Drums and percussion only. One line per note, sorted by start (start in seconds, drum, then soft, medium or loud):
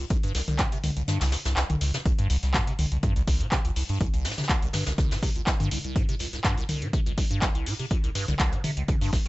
0.10 kick loud
0.10 closed hi-hat loud
0.10 closed hi-hat medium
0.23 closed hi-hat soft
0.35 snare medium
0.35 closed hi-hat medium
0.35 open hi-hat loud
0.48 snare soft
0.48 closed hi-hat soft
0.48 mid tom medium
0.58 kick loud
0.58 snare loud
0.58 clap loud
0.58 closed hi-hat medium
0.72 closed hi-hat soft
0.84 closed hi-hat medium
0.84 open hi-hat loud
0.84 mid tom loud
0.97 closed hi-hat soft
1.08 snare loud
1.08 closed hi-hat medium
1.08 mid tom medium
1.21 snare loud
1.21 clap soft
1.21 closed hi-hat medium
1.21 open hi-hat medium
1.32 snare loud
1.32 closed hi-hat medium
1.32 open hi-hat loud
1.45 snare loud
1.45 closed hi-hat medium
1.45 closed hi-hat soft
1.57 snare loud
1.57 clap loud
1.57 closed hi-hat medium
1.70 closed hi-hat soft
1.70 mid tom loud
1.81 closed hi-hat medium
1.81 open hi-hat loud
1.94 snare loud
1.94 closed hi-hat soft
1.94 closed hi-hat medium
2.06 kick loud
2.06 closed hi-hat medium
2.19 closed hi-hat soft
2.30 closed hi-hat medium
2.30 open hi-hat loud
2.43 snare soft
2.43 closed hi-hat soft
2.54 kick loud
2.54 snare loud
2.54 clap loud
2.54 closed hi-hat medium
2.67 closed hi-hat soft
2.79 closed hi-hat medium
2.79 open hi-hat loud
2.79 mid tom loud
2.92 closed hi-hat soft
3.03 kick loud
3.03 closed hi-hat medium
3.16 closed hi-hat soft
3.28 kick medium
3.28 closed hi-hat medium
3.28 open hi-hat loud
3.41 closed hi-hat soft
3.52 kick loud
3.52 snare loud
3.52 clap loud
3.52 closed hi-hat medium
3.65 closed hi-hat soft
3.76 open hi-hat medium
3.76 open hi-hat loud
3.89 closed hi-hat soft
4.01 kick loud
4.01 closed hi-hat medium
4.14 closed hi-hat soft
4.25 snare loud
4.25 closed hi-hat medium
4.25 open hi-hat loud
4.31 snare medium
4.31 closed hi-hat medium
4.38 snare medium
4.38 closed hi-hat medium
4.38 closed hi-hat soft
4.38 mid tom medium
4.44 snare medium
4.44 closed hi-hat medium
4.49 kick loud
4.49 snare loud
4.49 clap loud
4.49 closed hi-hat medium
4.62 closed hi-hat soft
4.73 snare loud
4.73 closed hi-hat medium
4.73 open hi-hat loud
4.73 mid tom medium
4.86 snare loud
4.86 closed hi-hat medium
4.86 closed hi-hat soft
4.98 kick loud
4.98 snare loud
4.98 closed hi-hat medium
4.98 mid tom medium
5.11 snare loud
5.11 closed hi-hat medium
5.11 open hi-hat medium
5.22 kick medium
5.22 snare medium
5.22 closed hi-hat medium
5.22 open hi-hat loud
5.35 closed hi-hat soft
5.47 kick loud
5.47 snare loud
5.47 clap loud
5.47 closed hi-hat medium
5.47 closed hi-hat loud
5.60 closed hi-hat soft
5.60 mid tom medium
5.71 closed hi-hat medium
5.71 open hi-hat loud
5.84 closed hi-hat soft
5.95 kick loud
5.95 closed hi-hat medium
6.09 closed hi-hat soft
6.19 closed hi-hat medium
6.19 open hi-hat loud
6.33 snare soft
6.33 closed hi-hat soft
6.44 kick loud
6.44 snare loud
6.44 clap loud
6.44 closed hi-hat medium
6.58 closed hi-hat soft
6.69 closed hi-hat medium
6.69 open hi-hat loud
6.69 mid tom medium
6.82 closed hi-hat soft
6.93 kick loud
6.93 closed hi-hat medium
7.06 closed hi-hat soft
7.18 kick medium
7.18 closed hi-hat medium
7.18 open hi-hat loud
7.31 closed hi-hat soft
7.42 kick loud
7.42 snare loud
7.42 clap loud
7.42 closed hi-hat medium
7.42 closed hi-hat loud
7.55 closed hi-hat soft
7.66 open hi-hat loud
7.66 open hi-hat medium
7.79 closed hi-hat soft
7.91 kick loud
7.91 closed hi-hat medium
8.04 closed hi-hat soft
8.15 snare medium
8.15 closed hi-hat medium
8.15 open hi-hat loud
8.28 snare soft
8.28 closed hi-hat soft
8.28 mid tom medium
8.39 kick loud
8.39 snare loud
8.39 clap loud
8.39 closed hi-hat medium
8.53 closed hi-hat soft
8.64 closed hi-hat medium
8.64 open hi-hat loud
8.64 mid tom medium
8.77 closed hi-hat soft
8.88 kick loud
8.88 closed hi-hat medium
8.88 mid tom medium
9.01 snare soft
9.01 open hi-hat medium
9.13 kick medium
9.13 snare medium
9.13 closed hi-hat medium
9.13 open hi-hat loud